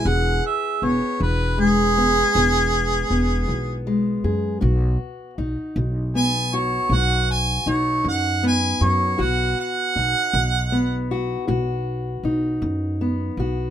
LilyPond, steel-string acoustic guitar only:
\new Staff \with { instrumentName = "Steel-string acoustic guitar" } { \time 12/8 \key b \mixolydian \tempo 4. = 53 << { <b gis'>4 b4 gis8 b8 b4 b4 gis8 gis'8 | fis'4 dis'4 b8 fis'8 fis'4 dis'4 b8 fis'8 | fis'4 dis'4 b8 fis'8 fis'4 dis'4 b8 fis'8 | } \\ { e,4 r8 e4 r8 e,4 r8 e4 r8 | b,4 r8 dis4 r8 b,4 r8 dis4 r8 | b,4 r8 dis4 r8 b,4 r8 dis4 r8 | } >> }